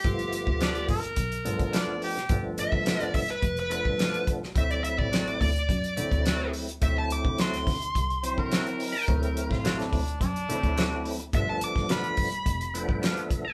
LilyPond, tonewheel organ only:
<<
  \new Staff \with { instrumentName = "Tonewheel organ" } { \time 4/4 \key g \mixolydian \tempo 4 = 106 r1 | r1 | r1 | r1 |
r1 | r2 r8 g''8 f''16 e''8. | }
  \new Staff \with { instrumentName = "Tonewheel organ" } { \time 4/4 \key g \mixolydian <f a b f'>4. r4 <f a b d'>4~ <f a b d'>16 r16 | <f a b d'>4. r4 <f a b d'>4~ <f a b d'>16 r16 | <fis a c' e'>4. r4 <fis a c' e'>4~ <fis a c' e'>16 r16 | <fis a c' e'>4. r4 <fis c' e'>4~ <fis c' e'>16 r16 |
<fis a c' e'>4. r4 <fis a c' e'>4~ <fis a c' e'>16 r16 | <f a b d'>4. r4 <f a b d'>4~ <f a b d'>16 r16 | }
>>